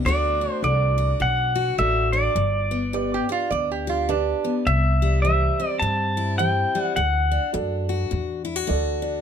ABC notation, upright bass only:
X:1
M:4/4
L:1/8
Q:"Swing" 1/4=104
K:Dmix
V:1 name="Upright bass" clef=bass
D,,2 C,,2 B,,,2 A,,,2 | G,,,4 D,,4 | C,,4 G,,4 | D,,2 F,,2 E,,2 D,,2 |]